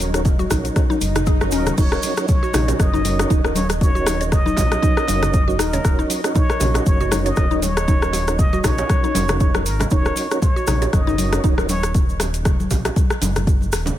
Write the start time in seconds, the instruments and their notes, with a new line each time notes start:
Already playing: analog synth bass D#1, analog synth pad F#3 D#4 D#5, tonewheel organ C#4 D#4 F#4 A#4 C#5
0.00 open hi-hat, muted conga, shaker
0.14 tonewheel organ C#4 D#4 F#4 A#4 C#5, cross-stick, closed hi-hat, shaker
0.25 kick, closed hi-hat, muted conga, low conga, shaker
0.39 synth arpeggio sound F#4, high conga, shaker
0.50 analog synth bass A#1, tonewheel organ C#4 D#4 F#4 A#4 C#5, synth arpeggio sound D#4, kick, cross-stick, open hi-hat, muted conga, high conga, low conga, shaker
0.65 closed hi-hat, shaker
0.76 kick, cross-stick, closed hi-hat, swell, high conga, shaker
0.90 synth arpeggio sound D#4, muted conga, shaker
1.01 analog synth bass F#1, open hi-hat, high conga, shaker
1.16 synth arpeggio sound D#4, cross-stick, closed hi-hat, muted conga, low conga, shaker
1.26 synth arpeggio sound G#4, kick, closed hi-hat, shaker
1.41 tonewheel organ C#4 D#4 F#4 A#4 C#5, synth arpeggio sound D#5, cross-stick, muted conga, high conga, shaker
1.51 analog synth bass D#1, synth arpeggio sound C#4, muted trumpet A#4, open hi-hat, shaker
1.66 cross-stick, closed hi-hat, muted conga, low conga, shaker
1.77 analog synth bass D#1, tonewheel organ C#4 D#4 A#4 C#5, synth arpeggio sound D#4, muted trumpet C#5, kick, closed hi-hat, crash, shaker
1.92 synth arpeggio sound A#4, cross-stick, shaker
2.03 open hi-hat, muted conga, shaker
2.17 tonewheel organ C#4 D#4 F#4 A#4 C#5, cross-stick, closed hi-hat, shaker
2.28 muted trumpet C#5, kick, closed hi-hat, muted conga, low conga, shaker
2.43 synth arpeggio sound F#4, shaker
2.53 analog synth bass A#1, tonewheel organ C#4 D#4 F#4 A#4 C#5, synth arpeggio sound D#4, cross-stick, open hi-hat, high bongo, low bongo, muted conga, low conga, shaker
2.68 synth arpeggio sound C#5, closed hi-hat, high bongo, shaker
2.79 analog synth bass F#1, muted trumpet D#5, kick, cross-stick, closed hi-hat, high conga, shaker
2.93 synth arpeggio sound D#4, muted conga, low conga, shaker
3.05 tonewheel organ C#4 D#4 F#4 A#4 C#5, open hi-hat, high conga, shaker
3.19 cross-stick, closed hi-hat, low bongo, muted conga, shaker
3.30 analog synth bass D#1, synth arpeggio sound D#4, kick, closed hi-hat, shaker
3.44 tonewheel organ C#4 D#4 F#4 A#4 C#5, synth arpeggio sound A#4, cross-stick, muted conga, high conga, shaker
3.55 muted trumpet C#5, open hi-hat, low bongo, high conga, shaker
3.69 cross-stick, closed hi-hat, muted conga, shaker
3.81 tonewheel organ C#4 D#4 F#4 A#4 C#5, muted trumpet C#5, kick, closed hi-hat, high conga, shaker
3.95 synth arpeggio sound F#4, shaker
4.06 synth arpeggio sound D#4, cross-stick, open hi-hat, high bongo, muted conga, shaker
4.21 tonewheel organ C#4 D#4 F#4 A#4 C#5, synth arpeggio sound C#5, closed hi-hat, shaker
4.32 muted trumpet D#5, kick, cross-stick, closed hi-hat, muted conga, low conga, shaker
4.46 synth arpeggio sound D#4, high conga, shaker
4.57 analog synth bass A#1, tonewheel organ C#4 D#4 F#4 A#4 C#5, kick, open hi-hat, high bongo, muted conga, high conga, low conga, shaker
4.72 cross-stick, closed hi-hat, high bongo, shaker
4.82 synth arpeggio sound D#4, kick, closed hi-hat, high conga, shaker
4.97 synth arpeggio sound A#4, cross-stick, muted conga, shaker
5.08 analog synth bass F#1, tonewheel organ C#4 D#4 F#4 A#4 C#5, open hi-hat, low bongo, high conga, shaker
5.22 cross-stick, closed hi-hat, muted conga, low conga, shaker
5.33 kick, closed hi-hat, shaker
5.48 tonewheel organ C#4 D#4 F#4 A#4 C#5, synth arpeggio sound F#4, muted conga, high conga, shaker
5.59 analog synth bass D#1, synth arpeggio sound D#4, muted trumpet A#4, cross-stick, open hi-hat, shaker
5.73 synth arpeggio sound C#5, closed hi-hat, low bongo, muted conga, low conga, shaker
5.84 analog synth bass D#1, tonewheel organ C#4 D#4 F#4 A#4 C#5, kick, cross-stick, closed hi-hat, shaker
5.99 synth arpeggio sound D#4, shaker
6.10 open hi-hat, muted conga, shaker
6.24 tonewheel organ C#4 D#4 F#4 A#4 C#5, cross-stick, closed hi-hat, shaker
6.35 synth arpeggio sound D#4, muted trumpet C#5, kick, closed hi-hat, muted conga, low conga, shaker
6.50 synth arpeggio sound A#4, cross-stick, shaker
6.60 analog synth bass A#1, tonewheel organ C#4 D#4 F#4 A#4 C#5, open hi-hat, high bongo, low bongo, muted conga, low conga, shaker
6.74 cross-stick, closed hi-hat, high bongo, shaker
6.86 analog synth bass F#1, muted trumpet C#5, kick, closed hi-hat, high conga, shaker
7.00 synth arpeggio sound F#4, muted conga, low conga, shaker
7.11 tonewheel organ C#4 D#4 F#4 A#4 C#5, synth arpeggio sound D#4, cross-stick, open hi-hat, high conga, shaker
7.25 synth arpeggio sound C#5, muted trumpet D#5, closed hi-hat, low bongo, muted conga, shaker
7.36 analog synth bass D#1, kick, cross-stick, closed hi-hat, shaker
7.51 tonewheel organ C#4 D#4 F#4 A#4 C#5, synth arpeggio sound D#4, muted conga, high conga, shaker
7.62 muted trumpet C#5, open hi-hat, low bongo, high conga, shaker
7.77 cross-stick, closed hi-hat, muted conga, shaker
7.88 tonewheel organ C#4 D#4 F#4 A#4 C#5, synth arpeggio sound D#4, kick, closed hi-hat, high conga, shaker
8.02 synth arpeggio sound A#4, cross-stick, shaker
8.13 open hi-hat, high bongo, muted conga, shaker
8.28 tonewheel organ C#4 D#4 F#4 A#4 C#5, cross-stick, closed hi-hat, shaker
8.39 muted trumpet D#5, kick, closed hi-hat, muted conga, low conga, shaker
8.53 synth arpeggio sound F#4, high conga, shaker
8.64 analog synth bass A#1, tonewheel organ C#4 D#4 F#4 A#4 C#5, synth arpeggio sound D#4, muted trumpet C#5, kick, cross-stick, open hi-hat, high bongo, muted conga, high conga, low conga, shaker
8.78 synth arpeggio sound C#5, closed hi-hat, high bongo, shaker
8.89 kick, cross-stick, closed hi-hat, high conga, shaker
9.04 synth arpeggio sound D#4, muted conga, shaker
9.15 analog synth bass F1, tonewheel organ C#4 D#4 F#4 A#4 C#5, open hi-hat, low bongo, high conga, shaker
9.28 cross-stick, closed hi-hat, low bongo, muted conga, low conga, shaker
9.40 synth arpeggio sound D#4, kick, closed hi-hat, shaker
9.55 tonewheel organ C#4 D#4 F#4 A#4 C#5, synth arpeggio sound A#4, cross-stick, muted conga, high conga, shaker
9.66 analog synth bass G#1, muted trumpet A#4, open hi-hat, shaker
9.79 cross-stick, closed hi-hat, low bongo, muted conga, low conga, shaker
9.91 analog synth bass D#1, tonewheel organ C#4 D#4 F#4 A#4 C#5, synth arpeggio sound D#4, muted trumpet C#5, kick, closed hi-hat, shaker
10.05 synth arpeggio sound A#4, cross-stick, shaker
10.16 open hi-hat, muted conga, shaker
10.31 tonewheel organ C#4 D#4 F#4 A#4 C#5, cross-stick, closed hi-hat, shaker
10.42 muted trumpet C#5, kick, closed hi-hat, muted conga, low conga, shaker
10.56 synth arpeggio sound F#4, shaker
10.67 analog synth bass A#1, tonewheel organ C#4 D#4 F#4 A#4 C#5, synth arpeggio sound D#4, cross-stick, open hi-hat, high bongo, low bongo, muted conga, low conga, shaker
10.82 synth arpeggio sound C#5, closed hi-hat, high bongo, shaker
10.93 analog synth bass F#1, muted trumpet D#5, kick, cross-stick, closed hi-hat, high conga, shaker
11.07 synth arpeggio sound D#4, muted conga, low conga, shaker
11.18 tonewheel organ C#4 D#4 F#4 A#4 C#5, open hi-hat, high conga, shaker
11.32 cross-stick, closed hi-hat, low bongo, muted conga, shaker
11.44 analog synth bass D#1, synth arpeggio sound D#4, kick, closed hi-hat, shaker
11.58 tonewheel organ C#4 D#4 F#4 A#4 C#5, synth arpeggio sound A#4, cross-stick, muted conga, high conga, shaker
11.69 muted trumpet C#5, open hi-hat, low bongo, high conga, shaker
11.83 cross-stick, closed hi-hat, muted conga, shaker
11.94 kick, closed hi-hat, high conga, shaker
12.09 shaker
12.20 cross-stick, open hi-hat, high bongo, muted conga, shaker
12.34 closed hi-hat, shaker
12.45 kick, cross-stick, closed hi-hat, muted conga, low conga, shaker
12.60 high conga, shaker
12.71 analog synth bass A#1, kick, open hi-hat, high bongo, muted conga, high conga, low conga, shaker
12.85 cross-stick, closed hi-hat, high bongo, shaker
12.96 kick, closed hi-hat, high conga, shaker
13.10 cross-stick, muted conga, shaker
13.21 analog synth bass F#1, open hi-hat, low bongo, high conga, shaker
13.36 cross-stick, closed hi-hat, muted conga, low conga, shaker
13.47 kick, closed hi-hat, shaker
13.61 muted conga, high conga, shaker
13.72 analog synth bass D#1, cross-stick, open hi-hat, shaker
13.86 closed hi-hat, low bongo, muted conga, low conga, shaker